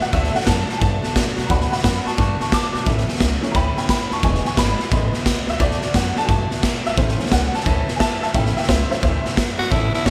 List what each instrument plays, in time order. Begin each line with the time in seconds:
0.00 upright bass B2, steel-string acoustic guitar A3 D4 F#4, honky-tonk piano F#5, snare
0.13 upright bass D2, steel-string acoustic guitar D3 A3 D4 F#4, honky-tonk piano E5, kick, snare
0.24 snare
0.34 honky-tonk piano F#3 A3 D4 F#5, steel-string acoustic guitar A3 D4 F#4, muted upright bass stroke, snare
0.41 snare
0.46 upright bass F#2, steel-string acoustic guitar D3 A3 D4 F#4, honky-tonk piano A5, kick, snare, hi-hat pedal
0.68 steel-string acoustic guitar A3 D4 F#4, muted upright bass stroke, snare
0.78 upright bass G2, steel-string acoustic guitar D3 A3, honky-tonk piano G#5, kick, snare
0.82 steel-string acoustic guitar D4 F#4, honky-tonk piano A5
1.02 steel-string acoustic guitar A3 D4 F#4, muted upright bass stroke, snare
1.14 upright bass B2, steel-string acoustic guitar D3 A3 D4 F#4, honky-tonk piano F#3 A3 D4, kick, snare, hi-hat pedal
1.37 upright bass B2, steel-string acoustic guitar A3 D4 F#4, snare
1.46 upright bass D2, steel-string acoustic guitar D3 A3 D4, honky-tonk piano F#3 A3 D4 F#5 A#5, kick, snare
1.51 steel-string acoustic guitar F#4, honky-tonk piano B5
1.61 snare
1.71 steel-string acoustic guitar A3 D4 F#4, honky-tonk piano F#5 B5, muted upright bass stroke, snare
1.78 snare
1.83 upright bass F#2, steel-string acoustic guitar D3 A3 D4 F#4, honky-tonk piano F#5 B5, kick, snare, hi-hat pedal
2.05 steel-string acoustic guitar A3 D4 F#4, honky-tonk piano A5 C#6, muted upright bass stroke, snare
2.17 upright bass G2, steel-string acoustic guitar D3 A3 D4 F#4, honky-tonk piano A5 C#6, kick, snare
2.39 steel-string acoustic guitar A3 D4 F#4, honky-tonk piano A5 C#6, muted upright bass stroke, snare
2.52 upright bass B2, steel-string acoustic guitar D3 A3 F#4, honky-tonk piano A5 D6, kick, snare, hi-hat pedal
2.73 upright bass B2, steel-string acoustic guitar A3 D4 F#4, snare
2.85 upright bass A1, steel-string acoustic guitar A2 E3 A3 C#4 E4, kick, snare
2.98 snare
3.07 steel-string acoustic guitar A3 C#4 E4, muted upright bass stroke, snare
3.15 snare
3.20 upright bass C#2, steel-string acoustic guitar E3 A3 C#4 E4, kick, snare, hi-hat pedal
3.42 honky-tonk piano E3 A3 C#4, steel-string acoustic guitar A3 C#4 E4, snare
3.51 upright bass D2, steel-string acoustic guitar A2 E3 A3, honky-tonk piano G5 A#5, kick, snare
3.56 steel-string acoustic guitar C#4 E4, honky-tonk piano B5
3.77 steel-string acoustic guitar A3 C#4 E4, honky-tonk piano G5 B5, muted upright bass stroke, snare
3.89 upright bass F#2, steel-string acoustic guitar E3 A3 C#4 E4, honky-tonk piano G5 B5, kick, snare, hi-hat pedal
4.11 upright bass D#2, steel-string acoustic guitar A3 C#4 E4, honky-tonk piano A5 C#6, snare
4.23 upright bass E1, steel-string acoustic guitar E2 B2 E3 G#3 B3 E4, honky-tonk piano E3 G#3 B3 G#5 C#6, kick, snare
4.35 snare
4.44 steel-string acoustic guitar E3 G#3 B3 E4, honky-tonk piano G#5 C#6, muted upright bass stroke, snare
4.56 upright bass G#1, steel-string acoustic guitar E3 G#3 B3 E4, honky-tonk piano B5, kick, snare, hi-hat pedal
4.78 steel-string acoustic guitar E3 G#3 B3 E4, snare
4.91 upright bass A1, steel-string acoustic guitar E2 B2 E3 G#3 B3 E4, kick, snare
5.13 steel-string acoustic guitar E3 G#3 B3 E4, muted upright bass stroke, snare
5.25 upright bass C#2, steel-string acoustic guitar E3 G#3 B3 E4, kick, snare, hi-hat pedal
5.48 upright bass D2, steel-string acoustic guitar E3 G#3 B3 E4, honky-tonk piano E5, snare
5.59 upright bass D2, steel-string acoustic guitar D3 A3 D4 F#4, honky-tonk piano D5, kick, snare
5.71 snare
5.82 steel-string acoustic guitar A3 D4 F#4, snare
5.94 upright bass F#2, steel-string acoustic guitar D3 A3 D4 F#4, honky-tonk piano F#5, kick, snare, hi-hat pedal
6.16 honky-tonk piano F#3 A3 D4 A5, steel-string acoustic guitar A3 D4 F#4, muted upright bass stroke, snare
6.25 upright bass G2, steel-string acoustic guitar D3, honky-tonk piano G#5, kick, snare
6.29 steel-string acoustic guitar A3 D4 F#4, honky-tonk piano A5
6.50 steel-string acoustic guitar A3 D4 F#4, muted upright bass stroke, snare
6.62 upright bass B2, steel-string acoustic guitar D3 A3 D4 F#4, kick, snare, hi-hat pedal
6.84 upright bass G1, steel-string acoustic guitar A3 D4 F#4, honky-tonk piano E5, snare
6.96 upright bass A1, steel-string acoustic guitar A2 E3 A3 C#4 E4, honky-tonk piano C5, kick, snare
7.09 snare
7.18 honky-tonk piano E3 A3 C#4, steel-string acoustic guitar A3 C#4 E4, snare
7.26 snare
7.31 upright bass C#2, steel-string acoustic guitar E3 A3 C#4 E4, honky-tonk piano F#5, kick, snare, hi-hat pedal
7.53 steel-string acoustic guitar A3 C#4 E4, honky-tonk piano A5, snare
7.60 honky-tonk piano G#5, snare
7.65 upright bass D2, steel-string acoustic guitar A2 E3 A3 C#4 E4, honky-tonk piano E3 A3 C#4 A5, kick, snare
7.87 steel-string acoustic guitar A3 C#4 E4, snare
7.96 steel-string acoustic guitar E3, honky-tonk piano E5 G#5, kick, snare, hi-hat pedal
8.00 upright bass F#2, steel-string acoustic guitar A3 C#4 E4, honky-tonk piano A5
8.21 upright bass G2, steel-string acoustic guitar A3 C#4 E4, honky-tonk piano E5 A5, snare
8.34 upright bass A1, steel-string acoustic guitar A2 E3 A3 C#4 E4, honky-tonk piano E5 G5, kick, snare
8.46 snare
8.56 steel-string acoustic guitar A3 C#4 E4, honky-tonk piano E5 G5, muted upright bass stroke, snare
8.63 snare
8.68 upright bass C#2, steel-string acoustic guitar E3 A3 C#4 E4, honky-tonk piano C5 E5, kick, snare, hi-hat pedal
8.89 honky-tonk piano E3 A3 C#4 C5 E5, steel-string acoustic guitar A3 C#4 E4, muted upright bass stroke, snare
9.02 upright bass D2, steel-string acoustic guitar A2 E3 A3 C#4 E4, honky-tonk piano C5 E5, kick, snare
9.24 steel-string acoustic guitar A3 C#4 E4, muted upright bass stroke, snare
9.36 upright bass F#2, steel-string acoustic guitar E3 A3 C#4 E4, kick, snare, hi-hat pedal
9.57 upright bass G2, steel-string acoustic guitar A3 C#4 E4, tenor saxophone F#4, snare
9.70 upright bass A1, steel-string acoustic guitar A2 E3 A3 C#4 E4, tenor saxophone E4, honky-tonk piano C#5 E5 A5, kick, snare
9.91 steel-string acoustic guitar A3 C#4 E4, tenor saxophone E4, honky-tonk piano C#5 E5 A5, snare
10.04 upright bass C#2, steel-string acoustic guitar E3 A3 C#4 E4, tenor saxophone C#4, honky-tonk piano C#5 E5 A5, kick, snare, hi-hat pedal